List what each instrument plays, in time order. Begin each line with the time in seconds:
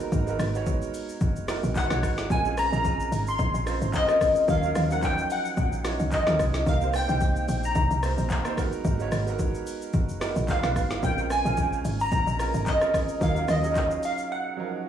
Already playing: grand piano G#3 B3 D#4 F#4 A#4
0.00 shaker
0.12 log drum bass G#1, kick, shaker
0.26 grand piano G#3 B3 D#4 F#4 A#4, shaker
0.39 log drum bass G#1, cross-stick, open hi-hat, shaker
0.53 grand piano G#3 B3 D#4 F#4 C#5, shaker
0.66 kick, shaker
0.82 shaker
0.94 open hi-hat, shaker
1.09 shaker
1.21 log drum bass F#1, kick, shaker
1.36 shaker
1.47 grand piano G#3 B3 D#4 F#4 A#4, cross-stick, snare, open hi-hat, shaker
1.63 log drum bass A#1, shaker
1.75 synth pluck F#5, kick, clap, shaker
1.89 log drum bass B1, grand piano G#3 B3 D#4 F#4 C#5, cross-stick, snare, shaker
2.03 log drum bass G#1, kick, cross-stick, open hi-hat, shaker
2.18 snare, shaker
2.29 log drum bass A#1, grand piano G#3 C4 C#4 F4 A#4, synth pluck G#5, kick, shaker
2.44 grand piano G#3 C4 C#4 F4 G#4, shaker
2.57 synth pluck A#5, cross-stick, open hi-hat, shaker
2.71 log drum bass A#1, grand piano G#3 C4 C#4 F4 A#4, shaker
2.85 kick, shaker
3.00 shaker
3.12 log drum bass G#1, open hi-hat, shaker
3.27 synth pluck C6, shaker
3.39 log drum bass A#1, kick, shaker
3.54 log drum bass A#1, shaker
3.65 grand piano G#3 C4 C#4 F4 C5, cross-stick, open hi-hat, shaker
3.81 log drum bass G#1, shaker
3.94 synth pluck D#5, kick, clap, shaker
4.08 grand piano G#3 C4 C#4 F4 A#4, cross-stick, shaker
4.21 kick, cross-stick, open hi-hat, shaker
4.36 shaker
4.47 log drum bass D#2, grand piano F#3 C#4 D#4 F4 A#4, synth pluck F5, kick, shaker
4.62 grand piano F#3 C#4 D#4 F4 A#4, shaker
4.75 log drum bass D#2, cross-stick, open hi-hat, shaker
4.89 grand piano F3 F#3 C#4 D#4 A#4, synth pluck F#5, shaker
5.03 synth pluck G5, kick, clap, shaker
5.18 shaker
5.30 synth pluck F#5, open hi-hat, shaker
5.45 shaker
5.57 log drum bass A#1, kick, shaker
5.72 shaker
5.84 grand piano F#3 C#4 D#4 F4 C#5, cross-stick, snare, open hi-hat, shaker
6.00 log drum bass C#2, shaker
6.12 synth pluck D#5, kick, clap, shaker
6.26 log drum bass D#2, grand piano F#3 C#4 D#4 F4 A#4, cross-stick, snare, shaker
6.39 log drum bass C2, kick, cross-stick, open hi-hat, shaker
6.54 snare, shaker
6.66 log drum bass C2, grand piano A#3 C4 D#4 G4 A#4, synth pluck F5, kick, shaker
6.80 grand piano A#3 C4 D#4 G4 C5, shaker
6.94 synth pluck G5, cross-stick, open hi-hat, shaker
7.08 log drum bass C2, grand piano A#3 C4 D#4 G4 C5, shaker
7.21 kick, shaker
7.36 shaker
7.48 log drum bass A#1, open hi-hat, shaker
7.63 synth pluck A#5, shaker
7.75 log drum bass C2, kick, shaker
7.91 log drum bass C2, shaker
8.02 grand piano A#3 C4 D#4 G4 C5, cross-stick, open hi-hat, shaker
8.18 log drum bass A#1, shaker
8.30 kick, clap, shaker
8.44 grand piano A#3 C4 D#4 G4 C5, cross-stick, shaker
8.56 grand piano G#3 B3 D#4 F#4 A#4, kick, cross-stick, open hi-hat, shaker
8.72 shaker
8.85 log drum bass G#1, kick, shaker
8.98 grand piano G#3 B3 D#4 F#4 C#5, shaker
9.12 log drum bass G#1, cross-stick, open hi-hat, shaker
9.26 grand piano G#3 B3 D#4 F#4 A#4, shaker
9.39 kick, shaker
9.55 shaker
9.67 open hi-hat, shaker
9.82 shaker
9.93 log drum bass F#1, kick, shaker
10.09 shaker
10.20 grand piano G#3 B3 D#4 F#4 A#4, cross-stick, snare, open hi-hat, shaker
10.36 log drum bass A#1, shaker
10.48 synth pluck F5, kick, clap, shaker
10.62 log drum bass B1, grand piano G#3 B3 D#4 F#4 B4, cross-stick, snare, shaker
10.76 log drum bass G#1, kick, cross-stick, open hi-hat, shaker
10.90 snare, shaker
11.02 log drum bass A#1, grand piano G#3 C4 C#4 F4 A#4, synth pluck G5, kick, shaker
11.17 grand piano G#3 C4 C#4 F4 A#4, shaker
11.30 synth pluck G#5, cross-stick, open hi-hat, shaker
11.44 log drum bass A#1, grand piano G#3 C4 C#4 F4 A#4, shaker
11.57 kick, shaker
11.73 shaker
11.85 log drum bass G#1, open hi-hat, shaker
12.00 synth pluck A#5, shaker
12.12 log drum bass A#1, kick, shaker
12.27 log drum bass A#1, shaker
12.38 grand piano G#3 C4 C#4 F4 A#4, cross-stick, open hi-hat, shaker
12.54 log drum bass G#1, shaker
12.66 synth pluck D#5, kick, clap, shaker
12.81 grand piano G#3 C4 C#4 F4 A#4, cross-stick, shaker
12.94 kick, cross-stick, open hi-hat, shaker
13.09 shaker
13.20 log drum bass D#2, grand piano F#3 C#4 D#4 F4 A#4, synth pluck F5, kick, shaker
13.35 grand piano F#3 C#4 D#4 F4 A#4, shaker
13.48 log drum bass D#2, synth pluck D#5, cross-stick, open hi-hat, shaker
13.62 grand piano F#3 C#4 D#4 F4 G#4, shaker
13.71 grand piano A#4
13.75 kick, clap, shaker
13.91 shaker
14.03 synth pluck F5, open hi-hat, shaker
14.18 shaker
14.32 synth pluck F#5
14.56 grand piano F3 F#3 C#4 D#4 A#4